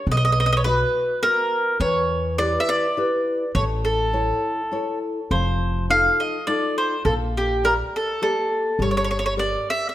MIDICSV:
0, 0, Header, 1, 4, 480
1, 0, Start_track
1, 0, Tempo, 581395
1, 62, Time_signature, 3, 2, 24, 8
1, 8213, End_track
2, 0, Start_track
2, 0, Title_t, "Mandolin"
2, 0, Program_c, 0, 25
2, 95, Note_on_c, 0, 75, 91
2, 131, Note_off_c, 0, 75, 0
2, 141, Note_on_c, 0, 75, 64
2, 196, Note_off_c, 0, 75, 0
2, 204, Note_on_c, 0, 75, 76
2, 257, Note_off_c, 0, 75, 0
2, 267, Note_on_c, 0, 75, 68
2, 320, Note_off_c, 0, 75, 0
2, 330, Note_on_c, 0, 75, 77
2, 371, Note_off_c, 0, 75, 0
2, 380, Note_on_c, 0, 75, 79
2, 424, Note_off_c, 0, 75, 0
2, 434, Note_on_c, 0, 75, 85
2, 467, Note_off_c, 0, 75, 0
2, 470, Note_on_c, 0, 73, 63
2, 528, Note_off_c, 0, 73, 0
2, 531, Note_on_c, 0, 71, 95
2, 980, Note_off_c, 0, 71, 0
2, 1013, Note_on_c, 0, 70, 90
2, 1461, Note_off_c, 0, 70, 0
2, 1490, Note_on_c, 0, 73, 73
2, 1965, Note_off_c, 0, 73, 0
2, 1968, Note_on_c, 0, 74, 91
2, 2148, Note_on_c, 0, 76, 75
2, 2149, Note_off_c, 0, 74, 0
2, 2218, Note_off_c, 0, 76, 0
2, 2220, Note_on_c, 0, 74, 99
2, 2894, Note_off_c, 0, 74, 0
2, 2929, Note_on_c, 0, 73, 71
2, 2998, Note_off_c, 0, 73, 0
2, 3176, Note_on_c, 0, 69, 64
2, 4111, Note_off_c, 0, 69, 0
2, 4386, Note_on_c, 0, 72, 62
2, 4831, Note_off_c, 0, 72, 0
2, 4875, Note_on_c, 0, 77, 87
2, 5119, Note_on_c, 0, 75, 70
2, 5129, Note_off_c, 0, 77, 0
2, 5338, Note_off_c, 0, 75, 0
2, 5341, Note_on_c, 0, 74, 82
2, 5577, Note_off_c, 0, 74, 0
2, 5596, Note_on_c, 0, 72, 68
2, 5808, Note_off_c, 0, 72, 0
2, 5820, Note_on_c, 0, 69, 60
2, 5889, Note_off_c, 0, 69, 0
2, 6088, Note_on_c, 0, 67, 62
2, 6295, Note_off_c, 0, 67, 0
2, 6314, Note_on_c, 0, 70, 90
2, 6381, Note_off_c, 0, 70, 0
2, 6572, Note_on_c, 0, 69, 68
2, 6778, Note_off_c, 0, 69, 0
2, 6792, Note_on_c, 0, 69, 76
2, 7282, Note_on_c, 0, 73, 73
2, 7283, Note_off_c, 0, 69, 0
2, 7341, Note_off_c, 0, 73, 0
2, 7356, Note_on_c, 0, 73, 58
2, 7397, Note_off_c, 0, 73, 0
2, 7407, Note_on_c, 0, 73, 76
2, 7457, Note_off_c, 0, 73, 0
2, 7467, Note_on_c, 0, 73, 72
2, 7509, Note_off_c, 0, 73, 0
2, 7519, Note_on_c, 0, 73, 64
2, 7577, Note_off_c, 0, 73, 0
2, 7587, Note_on_c, 0, 73, 72
2, 7633, Note_off_c, 0, 73, 0
2, 7643, Note_on_c, 0, 73, 67
2, 7704, Note_off_c, 0, 73, 0
2, 7756, Note_on_c, 0, 74, 91
2, 7984, Note_off_c, 0, 74, 0
2, 8009, Note_on_c, 0, 76, 85
2, 8155, Note_off_c, 0, 76, 0
2, 8164, Note_on_c, 0, 76, 55
2, 8213, Note_off_c, 0, 76, 0
2, 8213, End_track
3, 0, Start_track
3, 0, Title_t, "Nylon-string guitar"
3, 0, Program_c, 1, 24
3, 63, Note_on_c, 1, 59, 65
3, 526, Note_off_c, 1, 59, 0
3, 544, Note_on_c, 1, 66, 56
3, 547, Note_on_c, 1, 71, 47
3, 552, Note_on_c, 1, 75, 55
3, 924, Note_off_c, 1, 66, 0
3, 927, Note_off_c, 1, 71, 0
3, 928, Note_off_c, 1, 75, 0
3, 1010, Note_on_c, 1, 66, 43
3, 1016, Note_on_c, 1, 59, 41
3, 1019, Note_on_c, 1, 75, 51
3, 1397, Note_off_c, 1, 66, 0
3, 1399, Note_off_c, 1, 59, 0
3, 1402, Note_off_c, 1, 75, 0
3, 1492, Note_on_c, 1, 52, 63
3, 1959, Note_off_c, 1, 52, 0
3, 1971, Note_on_c, 1, 64, 48
3, 1974, Note_on_c, 1, 67, 42
3, 1980, Note_on_c, 1, 71, 56
3, 2355, Note_off_c, 1, 64, 0
3, 2357, Note_off_c, 1, 67, 0
3, 2361, Note_off_c, 1, 71, 0
3, 2452, Note_on_c, 1, 67, 45
3, 2454, Note_on_c, 1, 64, 51
3, 2460, Note_on_c, 1, 71, 55
3, 2834, Note_off_c, 1, 64, 0
3, 2835, Note_off_c, 1, 67, 0
3, 2839, Note_off_c, 1, 71, 0
3, 2935, Note_on_c, 1, 57, 66
3, 3398, Note_off_c, 1, 57, 0
3, 3411, Note_on_c, 1, 64, 54
3, 3415, Note_on_c, 1, 69, 41
3, 3416, Note_on_c, 1, 73, 51
3, 3797, Note_off_c, 1, 64, 0
3, 3798, Note_off_c, 1, 69, 0
3, 3800, Note_off_c, 1, 73, 0
3, 3893, Note_on_c, 1, 64, 38
3, 3897, Note_on_c, 1, 69, 42
3, 3902, Note_on_c, 1, 73, 54
3, 4280, Note_off_c, 1, 64, 0
3, 4282, Note_off_c, 1, 69, 0
3, 4285, Note_off_c, 1, 73, 0
3, 4383, Note_on_c, 1, 53, 62
3, 4848, Note_off_c, 1, 53, 0
3, 4867, Note_on_c, 1, 63, 50
3, 4872, Note_on_c, 1, 65, 42
3, 4878, Note_on_c, 1, 69, 49
3, 5251, Note_off_c, 1, 63, 0
3, 5252, Note_off_c, 1, 65, 0
3, 5253, Note_off_c, 1, 69, 0
3, 5345, Note_on_c, 1, 63, 49
3, 5349, Note_on_c, 1, 65, 46
3, 5353, Note_on_c, 1, 69, 47
3, 5730, Note_off_c, 1, 63, 0
3, 5730, Note_off_c, 1, 65, 0
3, 5731, Note_off_c, 1, 69, 0
3, 5829, Note_on_c, 1, 58, 68
3, 6293, Note_off_c, 1, 58, 0
3, 6305, Note_on_c, 1, 67, 56
3, 6308, Note_on_c, 1, 70, 43
3, 6312, Note_on_c, 1, 74, 52
3, 6690, Note_off_c, 1, 67, 0
3, 6692, Note_off_c, 1, 70, 0
3, 6693, Note_off_c, 1, 74, 0
3, 6784, Note_on_c, 1, 67, 49
3, 6788, Note_on_c, 1, 58, 45
3, 6794, Note_on_c, 1, 74, 51
3, 7168, Note_off_c, 1, 67, 0
3, 7171, Note_off_c, 1, 58, 0
3, 7174, Note_off_c, 1, 74, 0
3, 7262, Note_on_c, 1, 55, 67
3, 7727, Note_off_c, 1, 55, 0
3, 7735, Note_on_c, 1, 67, 52
3, 7740, Note_on_c, 1, 70, 43
3, 7744, Note_on_c, 1, 74, 60
3, 8121, Note_off_c, 1, 67, 0
3, 8124, Note_off_c, 1, 70, 0
3, 8126, Note_off_c, 1, 74, 0
3, 8213, End_track
4, 0, Start_track
4, 0, Title_t, "Upright bass"
4, 0, Program_c, 2, 32
4, 55, Note_on_c, 2, 35, 85
4, 679, Note_off_c, 2, 35, 0
4, 1484, Note_on_c, 2, 40, 82
4, 2110, Note_off_c, 2, 40, 0
4, 2930, Note_on_c, 2, 33, 90
4, 3555, Note_off_c, 2, 33, 0
4, 4382, Note_on_c, 2, 29, 78
4, 5007, Note_off_c, 2, 29, 0
4, 5821, Note_on_c, 2, 34, 78
4, 6448, Note_off_c, 2, 34, 0
4, 7256, Note_on_c, 2, 31, 71
4, 7880, Note_off_c, 2, 31, 0
4, 8213, End_track
0, 0, End_of_file